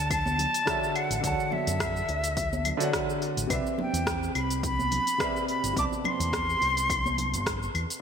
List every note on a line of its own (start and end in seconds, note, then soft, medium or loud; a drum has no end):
0.00 0.45 D2 loud
0.00 0.62 D3 medium
0.00 0.63 D4 medium
0.00 0.64 F#4 medium
0.00 0.65 C#5 medium
0.00 0.65 E5 medium
0.00 0.11 A5 loud
0.11 0.97 A5 loud
0.11 kick loud
0.11 open hi-hat medium
0.11 claves medium
0.11 shaker medium
0.26 high conga loud
0.26 shaker soft
0.39 open hi-hat medium
0.39 low conga medium
0.54 open hi-hat soft
0.54 shaker medium
0.66 1.19 D3 medium
0.66 1.20 D4 medium
0.66 1.21 F#4 medium
0.66 1.21 C#5 medium
0.66 1.21 E5 medium
0.66 kick loud
0.66 cross-stick loud
0.66 open hi-hat medium
0.66 shaker medium
0.84 shaker soft
0.96 1.24 F#5 medium
0.96 open hi-hat soft
0.96 claves medium
1.10 1.19 A1 medium
1.10 open hi-hat soft
1.10 shaker medium
1.21 1.33 D2 loud
1.21 2.76 D3 medium
1.21 2.77 D4 medium
1.21 2.78 F#4 medium
1.21 1.54 F#5 loud
1.21 kick loud
1.21 open hi-hat medium
1.21 shaker medium
1.26 2.78 C#5 medium
1.26 2.79 A5 medium
1.40 shaker soft
1.51 3.22 E5 loud
1.51 high bongo soft
1.51 high conga medium
1.51 low conga medium
1.67 2.01 F#2 loud
1.67 open hi-hat soft
1.67 shaker medium
1.80 kick loud
1.80 cross-stick loud
1.80 open hi-hat medium
1.80 claves medium
1.80 shaker medium
1.96 shaker soft
2.08 2.71 D2 loud
2.08 open hi-hat soft
2.08 high bongo medium
2.24 open hi-hat soft
2.24 shaker medium
2.37 kick loud
2.37 open hi-hat medium
2.37 shaker medium
2.53 high conga medium
2.53 shaker soft
2.65 open hi-hat medium
2.65 low conga medium
2.65 claves medium
2.77 3.45 D3 loud
2.77 3.46 D4 medium
2.77 3.47 F#4 medium
2.77 open hi-hat soft
2.77 shaker medium
2.82 3.48 C#5 medium
2.82 3.49 F#5 loud
2.93 kick loud
2.93 cross-stick loud
2.93 open hi-hat medium
2.93 shaker medium
3.10 shaker soft
3.22 open hi-hat soft
3.37 3.45 A1 medium
3.37 open hi-hat soft
3.37 shaker medium
3.47 3.60 C2 medium
3.47 5.15 C3 medium
3.47 5.16 C4 medium
3.47 5.17 B4 medium
3.47 kick loud
3.47 open hi-hat medium
3.47 claves medium
3.47 shaker medium
3.52 5.18 D5 medium
3.52 5.18 E5 medium
3.66 high bongo soft
3.66 shaker soft
3.78 4.33 G5 medium
3.78 high conga medium
3.78 low conga medium
3.93 4.27 E2 loud
3.93 open hi-hat soft
3.93 shaker medium
4.07 kick loud
4.07 cross-stick loud
4.07 open hi-hat medium
4.07 shaker medium
4.23 shaker soft
4.35 4.98 C2 loud
4.35 4.63 B5 medium
4.35 open hi-hat soft
4.35 high bongo soft
4.35 claves medium
4.50 open hi-hat soft
4.50 shaker medium
4.63 5.45 B5 loud
4.63 kick loud
4.63 open hi-hat medium
4.63 shaker medium
4.79 high conga medium
4.79 shaker soft
4.91 open hi-hat medium
4.91 low conga medium
5.07 open hi-hat soft
5.07 shaker medium
5.18 5.72 C3 medium
5.18 5.73 C4 medium
5.18 5.73 B4 medium
5.18 5.74 D5 medium
5.18 5.74 E5 medium
5.18 kick loud
5.18 cross-stick loud
5.18 open hi-hat medium
5.18 claves medium
5.18 shaker medium
5.36 shaker soft
5.48 5.75 B5 loud
5.48 open hi-hat soft
5.64 5.72 G1 medium
5.64 open hi-hat soft
5.64 shaker medium
5.73 5.86 C2 medium
5.73 7.29 C3 medium
5.73 7.30 B3 medium
5.73 7.29 C4 medium
5.73 kick loud
5.73 open hi-hat medium
5.78 7.31 D5 medium
5.78 7.32 A5 medium
5.78 5.84 D6 loud
5.78 shaker medium
5.92 high bongo soft
5.92 shaker soft
6.04 7.72 C6 loud
6.04 high bongo soft
6.04 high conga medium
6.04 low conga loud
6.04 claves medium
6.20 6.54 E2 loud
6.20 open hi-hat soft
6.20 high conga medium
6.20 shaker medium
6.33 kick loud
6.33 cross-stick loud
6.33 open hi-hat medium
6.33 shaker medium
6.50 shaker soft
6.61 7.35 C2 medium
6.61 open hi-hat soft
6.61 high bongo soft
6.77 open hi-hat soft
6.77 shaker medium
6.90 kick loud
6.90 open hi-hat medium
6.90 claves medium
6.90 shaker medium
7.06 high conga medium
7.06 shaker soft
7.18 open hi-hat medium
7.18 low conga medium
7.33 7.67 G1 medium
7.33 open hi-hat soft
7.33 shaker medium
7.46 kick loud
7.46 cross-stick loud
7.46 open hi-hat medium
7.46 shaker medium
7.63 shaker soft
7.75 7.84 E2 medium
7.75 open hi-hat soft
7.75 claves medium
7.90 open hi-hat soft
7.90 shaker medium